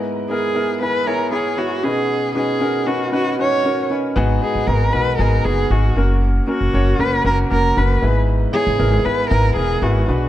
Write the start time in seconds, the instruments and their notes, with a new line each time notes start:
Already playing: grand piano G#2 B3 E4 G#4 B4
0.30 grand piano B3 E4 G#4 A#4, cello G#4
0.55 grand piano B3 E4 G#4 A#4
0.81 grand piano B3 E4 G#4 B4, cello B4
1.07 grand piano B3 E4 G#4 C#5, cello A#4
1.32 grand piano B3 E4 G#4 C#5, cello G#4
1.57 grand piano B3 E4 G#4 C#5, cello F#4
1.83 grand piano B2 C#4 D#4 F#4 B4, cello G#4
2.35 grand piano C#4 D#4 F#4 B4, cello G#4
2.61 grand piano C#4 D#4 F#4 A#4
2.87 grand piano C#4 D#4 F#4 B4, cello F#4
3.12 grand piano C#4 D#4 F#4 B4, cello F#4
3.38 grand piano C#4 D#4 F#4 B4, cello C#5
3.64 grand piano C#4 D#4 F#4 A#4
3.90 grand piano C#4 D#4 F#4 B4
4.16 upright bass G#1, grand piano G#2 B3 D#4 F#4 G#4
4.42 grand piano B3 D#4 F#4 B4, cello G#4
4.55 upright bass G#1
4.67 upright bass G#1, grand piano B3 D#4 F#4 G#4, cello A#4
4.93 upright bass B1, grand piano B3 D#4 F#4 A#4, cello B4
5.18 upright bass G#1, grand piano B3 D#4 F#4 G#4, cello A#4
5.45 upright bass F#1, grand piano B3 D#4 F#4 G#4, cello G#4
5.70 upright bass G#1, grand piano B3 D#4 F#4 G#4, cello F#4
5.96 upright bass F#1, grand piano A#3 C#4 F#4 A#4
6.47 grand piano A#3 C#4 F#4 A#4, cello F#4
6.61 upright bass F#1
6.73 upright bass F#1, grand piano A#3 C#4 F#4 C#5
6.99 upright bass F#1, grand piano A#3 C#4 F#4 A#4, cello B4
7.24 upright bass F#1, grand piano A#3 C#4 F#4 A#4, cello A#4
7.50 upright bass F1, grand piano A#3 C#4 F#4 A#4, cello A#4
7.76 upright bass F#1, grand piano A#3 C#4 F#4 A#4, cello B4
8.02 upright bass G#1, grand piano G#2 B3 E4 G#4 B4
8.52 grand piano B3 E4 G#4 C#5, cello G#4
8.67 upright bass G#1
8.79 upright bass G#1, grand piano B3 E4 G#4 A#4
9.04 upright bass G#1, grand piano B3 E4 G#4 B4, cello B4
9.30 upright bass G#1, grand piano B3 E4 G#4 B4, cello A#4
9.56 upright bass E1, grand piano B3 E4 G#4 A#4, cello G#4
9.82 upright bass G#1, grand piano B3 E4 G#4 B4, cello F#4
10.07 upright bass B1, grand piano B2 D4 F#4 G#4 B4